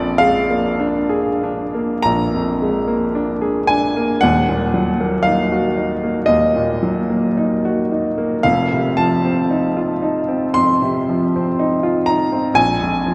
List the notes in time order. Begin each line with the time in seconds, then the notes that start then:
Already playing: A#1 F2 D5
0.18 G#3 F5
0.50 A#3
0.80 D4
1.09 G#4
1.44 D4
1.75 A#3
2.02 A#1 A#5
2.34 F2
2.62 G#3
2.88 A#3
3.15 D4
3.42 G#4
3.67 D4 G#5
3.97 A#3
4.21 D#1 D#2 F#5
4.49 A#2
4.74 F#3
5.00 A#3
5.23 D#4 F5
5.52 F#4
5.77 D#4
6.04 A#3
6.26 D#2 D#5
6.56 A#2
6.83 F#3
7.10 A#3
7.37 D#4
7.65 F#4
7.92 D#4
8.18 A#3
8.43 F1 F2 F5
8.73 C3
8.97 F3 A5
9.25 C4
9.50 D#4
9.77 F4
10.02 D#4
10.28 C4
10.54 F2 C6
10.82 C3
11.09 F3
11.36 C4
11.59 D#4
11.83 F4
12.06 D#4 A#5
12.32 C4
12.54 A#1 G#5
12.81 F2
13.06 F3